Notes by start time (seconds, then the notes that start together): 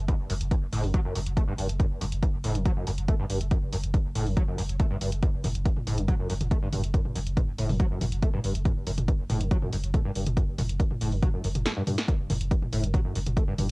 0.08 F#2, kick, closed hi-hat
0.19 F#1
0.29 F#1 F#2, open hi-hat
0.41 F#1, closed hi-hat
0.51 G2, kick, closed hi-hat
0.62 F#1
0.72 F#1 A2, open hi-hat
0.83 F#1 F#2, open hi-hat
0.94 F#3, kick, closed hi-hat
1.05 F#1 F#2
1.15 F#1 F#2, open hi-hat
1.26 F#1, closed hi-hat
1.37 A3, kick, closed hi-hat
1.48 F#1 G2
1.58 F#1 G2, open hi-hat
1.69 F#1, closed hi-hat
1.79 F#2, kick, closed hi-hat
1.91 F#1
2.01 F#1 F#2, open hi-hat
2.12 F#1, closed hi-hat
2.23 G2, kick, closed hi-hat
2.34 F#1
2.44 F#1 A2, open hi-hat
2.55 F#1 F#2, closed hi-hat
2.65 F#3, kick, closed hi-hat
2.76 F#1 F#2
2.87 F#1 F#2, open hi-hat
2.98 F#1, closed hi-hat
3.08 A3, kick, closed hi-hat
3.19 F#1 G2
3.30 F#1 G2, open hi-hat
3.41 F#1, closed hi-hat
3.51 F#2, kick, closed hi-hat
3.62 F#1
3.73 F#1 F#2, open hi-hat
3.84 F#1, closed hi-hat
3.94 G2, kick, closed hi-hat
4.05 F#1
4.15 F#1 A2, open hi-hat
4.26 F#1 F#2, open hi-hat
4.37 F#3, kick, closed hi-hat
4.48 F#1 F#2
4.58 F#1 F#2, open hi-hat
4.69 F#1, closed hi-hat
4.80 A3, kick, closed hi-hat
4.91 F#1 G2
5.01 F#1 G2, open hi-hat
5.12 F#1, closed hi-hat
5.22 F#2, kick, closed hi-hat
5.34 F#1
5.44 F#1 F#2, open hi-hat, mid tom
5.55 F#1, closed hi-hat
5.65 G2, kick, closed hi-hat
5.76 F#1, mid tom
5.87 F#1 A2, open hi-hat
5.98 F#1 F#2, closed hi-hat
6.08 F#3, kick, closed hi-hat, mid tom
6.19 F#1 F#2
6.30 F#1 F#2, open hi-hat
6.41 F#1, closed hi-hat, mid tom
6.51 A3, kick, closed hi-hat
6.62 F#1 G2
6.73 F#1 G2, open hi-hat, mid tom
6.84 F#1, closed hi-hat
6.94 F#2, kick, closed hi-hat
7.05 F#1, mid tom
7.15 F#1 F#2, open hi-hat
7.26 F#1, closed hi-hat
7.37 G2, kick, closed hi-hat, mid tom
7.48 F#1
7.58 F#1 A2, open hi-hat
7.69 F#1 F#2, open hi-hat, mid tom
7.80 F#3, kick, closed hi-hat
7.91 F#1 F#2
8.01 F#1 F#2, open hi-hat, mid tom
8.12 F#1, closed hi-hat
8.23 A3, kick, closed hi-hat
8.33 F#1 G2, mid tom
8.44 F#1 G2, open hi-hat
8.55 F#1, closed hi-hat
8.65 F#2, kick, closed hi-hat, mid tom
8.76 F#1
8.87 F#1 F#2, open hi-hat
8.98 F#1, closed hi-hat, mid tom
9.08 G2, kick, closed hi-hat
9.19 F#1
9.30 F#1 A2, open hi-hat, mid tom
9.41 F#1 F#2, closed hi-hat
9.51 F#3, kick, closed hi-hat
9.62 F#1 F#2, mid tom
9.73 F#1 F#2, open hi-hat
9.84 F#1, closed hi-hat
9.94 A3, kick, closed hi-hat, mid tom
10.05 F#1 G2
10.15 F#1 G2, open hi-hat
10.26 F#1, closed hi-hat, mid tom
10.37 F#2, kick, closed hi-hat
10.48 F#1
10.58 F#1 F#2, open hi-hat, mid tom
10.69 F#1, closed hi-hat
10.80 G2, kick, closed hi-hat
10.91 F#1, mid tom
11.01 F#1 A2, open hi-hat
11.12 F#1 F#2, open hi-hat
11.23 F#3, kick, closed hi-hat, mid tom
11.33 F#1 F#2
11.44 F#1 F#2, open hi-hat
11.55 F#1, closed hi-hat, mid tom
11.66 A3, snare, closed hi-hat
11.77 G2
11.87 G2, open hi-hat, mid tom
11.98 snare, closed hi-hat
12.08 F#2, kick, closed hi-hat
12.19 F#1
12.30 F#1 F#2, open hi-hat, mid tom
12.41 F#1, closed hi-hat
12.51 G2, kick, closed hi-hat
12.62 F#1, mid tom
12.72 F#1 A2, open hi-hat
12.83 F#1 F#2, closed hi-hat
12.94 F#3, kick, closed hi-hat, mid tom
13.05 F#1 F#2
13.15 F#1 F#2, open hi-hat
13.26 F#1, closed hi-hat, mid tom
13.37 A3, kick, closed hi-hat
13.48 F#1 G2
13.58 F#1 G2, open hi-hat, mid tom